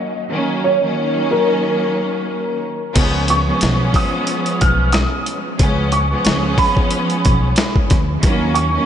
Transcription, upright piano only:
0.64 1.27 C#5 medium
1.31 2.92 A#4 medium
3.30 3.91 C#6 medium
3.96 4.57 D#6 medium
4.61 4.91 F6 medium
4.93 5.23 D#6 medium
5.92 6.54 C#6 medium
6.58 8.19 B5 medium
8.54 8.86 C#6 medium

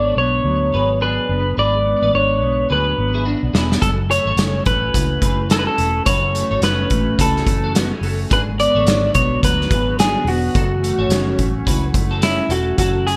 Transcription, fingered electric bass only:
0.00 0.11 G#1 medium
0.16 0.39 B1 medium
0.44 0.74 D2 medium
0.72 1.18 G#1 medium
1.29 1.52 F#1 medium
1.57 1.93 G#1 loud
2.02 2.11 A1 medium
2.14 2.42 G#1 medium
2.42 2.64 B1 loud
2.70 2.93 D2 medium
2.98 3.34 G#1 medium
3.43 3.52 B1 loud
3.53 3.76 E1 medium
3.81 4.18 F#1 loud
4.25 4.35 G#1 medium
4.36 4.59 F#1 loud
4.66 4.88 A1 medium
4.94 5.16 C#2 medium
5.21 5.67 F#1 medium
5.78 6.01 E1 medium
6.06 6.42 F#1 medium
6.51 6.60 G#1 loud
6.61 6.84 F#1 loud
6.91 7.13 A1 medium
7.19 7.41 C#2 medium
7.46 7.91 F#1 medium
8.01 8.24 F#1 medium
8.31 8.67 G#1 medium
8.75 8.84 A1 medium
8.85 9.08 G#1 medium
9.15 9.37 B1 medium
9.43 9.65 D2 medium
9.70 10.15 G#1 medium
10.25 10.48 E1 medium
10.55 10.91 F#1 loud
10.98 11.08 G#1 medium
11.09 11.32 F#1 loud
11.39 11.61 A1 medium
11.66 11.89 C#2 loud
11.94 12.39 F#1 medium
12.49 12.72 E1 medium
12.78 13.14 F#1 medium

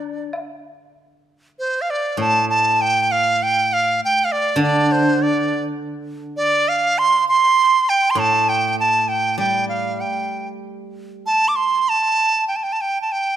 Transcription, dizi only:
0.00 0.35 D5 loud
1.59 1.83 C5 medium
1.81 1.92 F5 medium
1.90 2.20 D5 medium
2.20 2.48 A5 medium
2.49 2.83 A5 medium
2.81 3.02 G5 medium
3.02 3.13 G5 medium
3.12 3.44 F5 medium
3.43 3.75 G5 medium
3.73 4.01 F5 medium
4.05 4.26 G5 medium
4.25 4.33 F5 medium
4.32 4.60 D5 medium
4.63 4.93 D5 medium
4.92 5.24 C5 medium
5.22 5.64 D5 medium
6.37 6.70 D5 medium
6.68 7.00 F5 medium
6.98 7.27 C6 medium
7.28 7.91 C6 medium
7.89 8.12 G5 medium
8.11 8.21 C6 medium
8.20 8.50 A5 medium
8.49 8.78 G5 medium
8.80 9.02 A5 medium
9.02 9.10 A5 medium
9.08 9.39 G5 medium
9.39 9.67 G5 medium
9.69 10.02 F5 medium
10.01 10.48 G5 soft
11.26 11.50 A5 medium
11.48 11.57 D6 medium
11.56 11.90 C6 medium
11.89 12.47 A5 medium
12.48 12.58 G5 medium
12.56 12.65 A5 medium
12.63 12.74 G5 medium
12.72 12.83 A5 medium
12.81 13.01 G5 medium
13.02 13.13 A5 medium
13.12 13.37 G5 medium

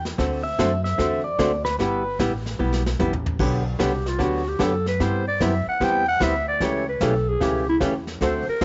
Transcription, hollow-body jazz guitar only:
0.18 0.41 D3 medium
0.18 0.41 A3 medium
0.18 0.41 C4 medium
0.18 0.41 F#4 medium
0.18 0.41 A4 medium
0.59 0.71 D3 medium
0.59 0.71 A3 medium
0.59 0.71 C4 medium
0.59 0.71 F#4 medium
0.59 0.71 A4 medium
0.98 1.21 D3 medium
0.98 1.21 A3 medium
0.98 1.21 C4 medium
0.98 1.21 F#4 medium
0.98 1.21 A4 medium
1.39 1.51 D3 medium
1.39 1.51 A3 medium
1.39 1.51 C4 medium
1.39 1.51 F#4 medium
1.39 1.51 A4 medium
1.80 2.02 G3 medium
1.80 2.02 B3 medium
1.80 2.02 E4 medium
1.80 2.02 G4 medium
2.20 2.31 G3 medium
2.20 2.31 B3 medium
2.20 2.32 E4 medium
2.20 2.32 G4 medium
2.59 2.82 G3 medium
2.59 2.82 B3 medium
2.59 2.82 E4 medium
2.59 2.82 G4 medium
3.00 3.12 G3 medium
3.00 3.11 B3 medium
3.00 3.12 E4 medium
3.00 3.12 G4 medium
3.40 3.62 D3 medium
3.40 3.62 F#3 medium
3.40 3.62 B3 medium
3.40 3.62 D4 medium
3.40 3.62 G4 medium
3.79 3.91 D3 medium
3.79 3.91 F#3 medium
3.79 3.92 B3 medium
3.79 3.92 D4 medium
3.79 3.92 G4 medium
4.19 4.42 D3 medium
4.19 4.42 F#3 medium
4.19 4.42 B3 medium
4.19 4.42 D4 medium
4.19 4.42 G4 medium
4.59 4.71 D3 medium
4.59 4.71 F#3 medium
4.59 4.72 B3 medium
4.59 4.72 D4 medium
4.59 4.72 G4 medium
5.00 5.23 C3 medium
5.00 5.23 G3 medium
5.00 5.23 B3 medium
5.00 5.23 E4 medium
5.00 5.23 G4 medium
5.41 5.52 C3 medium
5.41 5.52 G3 medium
5.41 5.53 B3 medium
5.41 5.53 E4 medium
5.41 5.53 G4 medium
5.81 6.03 C3 medium
5.81 6.03 G3 medium
5.81 6.03 B3 medium
5.81 6.03 E4 medium
5.81 6.04 G4 medium
6.20 6.32 C3 medium
6.20 6.33 G3 medium
6.20 6.33 B3 medium
6.20 6.33 E4 medium
6.20 6.33 G4 medium
6.61 6.83 C#3 medium
6.61 6.83 E3 medium
6.61 6.84 A3 medium
6.61 6.84 C#4 medium
6.61 6.84 G4 medium
7.01 7.13 C#3 medium
7.01 7.13 E3 medium
7.01 7.13 A3 medium
7.01 7.13 C#4 medium
7.01 7.13 G4 medium
7.41 7.63 C#3 medium
7.41 7.64 E3 medium
7.41 7.64 A3 medium
7.41 7.64 C#4 medium
7.41 7.64 G4 medium
7.80 7.93 C#3 medium
7.80 7.93 E3 medium
7.80 7.93 A3 medium
7.80 7.93 C#4 medium
7.80 7.93 G4 medium
8.21 8.44 D3 medium
8.21 8.44 A3 medium
8.21 8.44 C4 medium
8.21 8.44 F#4 medium
8.21 8.44 A4 medium
8.61 8.65 D3 medium
8.61 8.65 A3 medium
8.61 8.65 C4 medium

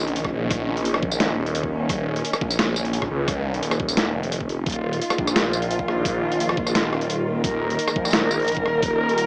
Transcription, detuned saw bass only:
0.00 0.32 A#1 medium
0.33 1.36 A#1 loud
1.38 1.88 D#1 loud
1.89 2.23 D#1 loud
2.41 3.09 A#1 medium
3.11 3.61 C#2 loud
3.62 4.13 D#1 loud
4.15 4.65 F1 medium
4.66 5.00 D#1 loud
5.19 5.87 A#1 loud
5.88 6.91 A#1 medium
6.92 7.43 D#1 loud
7.44 7.77 D#1 loud
7.96 8.64 A#1 medium
8.65 9.26 D#1 medium

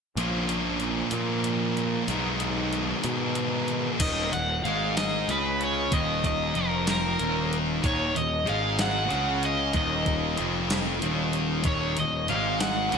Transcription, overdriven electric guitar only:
4.01 4.30 D#5 medium
4.33 4.62 F#5 medium
4.64 4.94 F5 medium
4.98 5.30 D#5 medium
5.31 5.62 B4 medium
5.64 5.92 C#5 medium
5.93 6.25 D#5 medium
6.27 6.58 D#5 medium
6.56 6.86 A#4 medium
6.91 7.57 A#4 medium
7.86 8.17 C#5 medium
8.17 8.49 D#5 medium
8.49 8.78 F5 medium
8.81 9.45 F#5 medium
9.46 9.74 D#5 medium
9.77 10.44 D#5 medium
11.67 11.96 C#5 medium
12.00 12.29 D#5 medium
12.30 12.61 F5 medium
12.61 12.98 F#5 loud

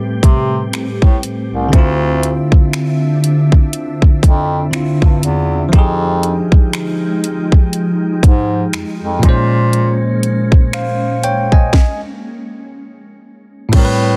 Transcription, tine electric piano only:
0.00 1.67 A2 medium
0.00 1.69 G3 medium
0.00 1.71 C4 medium
0.00 1.72 B4 medium
1.69 4.67 D3 medium
1.69 4.68 C4 medium
1.75 4.70 E4 medium
1.75 4.72 F4 medium
4.71 5.72 D3 medium
4.71 5.73 C4 soft
4.71 5.74 E4 soft
4.76 5.74 F4 medium
5.69 9.17 F3 medium
5.69 9.19 D#4 medium
5.75 9.20 G4 medium
5.75 9.22 G#4 medium
9.19 11.67 A#2 medium
9.19 11.69 G#3 medium
9.25 11.70 C#4 medium
9.25 10.73 C5 medium
10.74 11.21 C5 medium
10.74 11.21 F5 medium
11.24 11.51 C#5 medium
11.24 11.51 G5 medium
11.53 12.00 D#5 medium
11.53 12.00 G#5 medium
13.69 14.17 A2 medium
13.69 14.17 G3 medium
13.75 14.17 C4 medium
13.75 13.83 A#4 medium
13.85 14.17 B4 medium

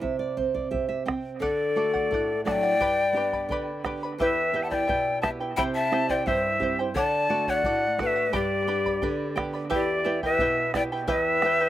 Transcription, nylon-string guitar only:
0.01 1.37 C3 medium
0.01 0.19 E5 medium
0.19 0.36 D5 medium
0.37 0.71 C4 soft
0.37 0.53 C5 medium
0.55 0.71 D5 soft
0.71 1.05 G4 medium
0.71 0.87 E5 medium
0.89 1.05 E5 medium
1.06 1.40 C4 soft
1.06 1.39 G5 medium
1.40 2.08 D3 medium
1.76 2.31 A3 soft
1.76 2.32 D4 soft
1.76 2.32 F#4 soft
2.11 2.78 A2 medium
2.45 2.74 F#3 soft
2.45 2.73 A3 soft
2.45 2.73 D4 soft
2.80 3.47 G2 medium
3.13 3.69 B3 soft
3.13 3.69 D4 soft
3.13 3.70 G4 soft
3.49 4.16 D3 medium
3.84 4.12 B3 soft
3.84 4.12 D4 soft
3.84 4.12 G4 soft
4.18 4.86 E2 medium
4.53 5.09 B3 soft
4.53 5.09 E4 soft
4.53 5.09 G4 soft
4.89 5.55 B2 medium
5.23 5.51 B3 soft
5.23 5.51 E4 soft
5.23 5.51 G4 soft
5.57 6.24 C3 medium
5.92 6.47 C4 soft
5.92 6.47 E4 soft
5.92 6.47 G4 soft
6.26 6.93 G2 medium
6.59 6.88 C4 soft
6.59 6.88 E4 soft
6.59 6.88 G4 soft
6.94 7.62 D3 medium
7.29 7.85 A3 soft
7.29 7.84 D4 soft
7.29 7.85 F#4 medium
7.65 8.31 A2 medium
7.98 8.26 A3 soft
7.98 8.26 D4 soft
7.98 8.27 F#4 soft
8.33 9.00 G2 medium
8.67 9.23 B3 soft
8.67 9.23 D4 soft
8.67 9.23 G4 soft
9.03 9.69 D3 medium
9.36 9.64 B3 soft
9.36 9.64 D4 soft
9.36 9.64 G4 soft
9.71 10.38 E2 medium
10.06 10.61 B3 soft
10.06 10.61 E4 soft
10.06 10.61 G4 medium
10.40 11.07 B2 medium
10.74 11.02 B3 soft
10.74 11.02 E4 soft
10.74 11.02 G4 soft
11.09 11.69 E2 medium
11.42 11.69 B3 soft
11.42 11.69 E4 soft
11.42 11.69 G4 soft

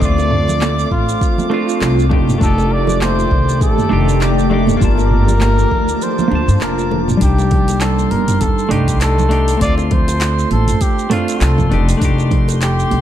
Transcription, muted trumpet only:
0.01 0.87 D5 loud
0.92 1.77 F4 loud
2.42 2.74 A4 loud
2.73 3.02 D5 loud
3.02 3.58 C5 loud
3.62 4.24 A4 loud
4.22 4.69 G4 medium
4.83 6.05 A#4 loud
6.03 6.64 C5 loud
6.63 7.09 A#4 medium
7.22 7.83 G4 loud
7.81 8.13 A4 medium
8.11 8.42 A#4 medium
8.41 8.73 A4 loud
8.71 9.01 G4 medium
9.01 9.57 A4 loud
9.62 9.75 D5 loud
9.92 10.48 C5 loud
10.52 10.83 A4 loud
10.82 11.14 G4 loud
11.12 11.44 F4 medium
11.43 11.89 A4 medium
12.63 13.01 G4 loud

